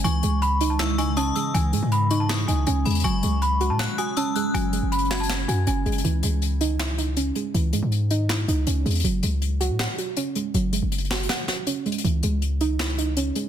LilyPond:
<<
  \new Staff \with { instrumentName = "Synth bell" } { \time 4/4 \key cis \minor \tempo 4 = 160 cis'''2 e'''8 cis'''8 dis'''8 e'''8 | r4. cis'''8 dis'''4. b''8 | cis'''2 fis'''8 dis'''8 e'''8 fis'''8 | r4. gis'''4. r4 |
r1 | r1 | r1 | r1 |
r1 | }
  \new Staff \with { instrumentName = "Celesta" } { \time 4/4 \key cis \minor gis''4 b''8. a''16 r8 gis''8 a''4 | gis''4 b''8. a''16 r8 gis''8 gis''4 | gis''4 b''8. a''16 r8 gis''8 a''4 | gis''4 b''8. a''16 r8 gis''8 gis''4 |
r1 | r1 | r1 | r1 |
r1 | }
  \new Staff \with { instrumentName = "Synth pluck" } { \time 4/4 \key cis \minor e8 gis4 dis'8 e'8 dis'8 cis'8 gis8 | e8 gis4 dis'8 e'8 dis'8 cis'8 gis8 | fis8 gis4 fis'8 fis''8 fis'8 cis'8 gis8 | fis8 gis4 fis'8 fis''8 fis'8 cis'8 gis8 |
e8 gis4 dis'8 e'8 dis'8 cis'8 gis8 | e8 gis4 dis'8 e'8 dis'8 cis'8 gis8 | fis8 gis4 fis'8 fis''8 fis'8 cis'8 gis8 | fis8 gis4 fis'8 fis''8 fis'8 cis'8 gis8 |
e8 gis4 dis'8 e'8 dis'8 cis'8 gis8 | }
  \new Staff \with { instrumentName = "Ambient pad" } { \clef bass \time 4/4 \key cis \minor <cis e gis dis''>1~ | <cis e gis dis''>1 | <fis gis cis'>1~ | <fis gis cis'>1 |
r1 | r1 | r1 | r1 |
r1 | }
  \new Staff \with { instrumentName = "808-style bass" } { \clef bass \time 4/4 \key cis \minor cis,8 cis,2. r8 | cis,8 gis,16 gis,4.~ gis,16 cis,8 cis,8 e,8 | fis,,8 cis,4~ cis,16 a,8 r4. r16 | fis,,8. fis,,4.~ fis,,16 fis,8 fis,,8 fis,,8 |
cis,8 cis,2. r8 | cis,8 gis,16 gis,4.~ gis,16 cis,8 cis,8 e,8 | fis,,8 cis,4~ cis,16 a,8 r4. r16 | fis,,8. fis,,4~ fis,,16 r2 |
cis,8 cis,2. r8 | }
  \new DrumStaff \with { instrumentName = "Drums" } \drummode { \time 4/4 hh8 hh8 hh8 hh8 <hc sn>8 hh8 hh8 hh8 | hh8 hh8 hh8 hh8 <hc sn>8 hh8 hh8 <hh hho>32 hh32 hh32 hh32 | hh8 hh8 hh8 hh8 <hc sn>8 hh8 hh8 hh8 | hh8 hh8 \tuplet 3/2 { hh16 hh16 hh16 <hc sn>16 hh16 hh16 } <hc sn>8 hh8 \tuplet 3/2 { hh16 r16 r16 hh16 hh16 hh16 } |
hh8 hh8 hh8 hh8 <hc sn>8 hh8 hh8 hh8 | hh8 hh8 hh8 hh8 <hc sn>8 hh8 hh8 hh32 hh32 hh32 hh32 | hh8 hh8 hh8 hh8 <hc sn>8 hh8 hh8 hh8 | hh8 hh8 \tuplet 3/2 { hh16 hh16 hh16 <hc hho sn>16 hh16 hh16 } <hc sn>8 <hh sn>8 \tuplet 3/2 { hh16 r16 r16 hh16 hh16 hh16 } |
hh8 hh8 hh8 hh8 <hc sn>8 hh8 hh8 hh8 | }
>>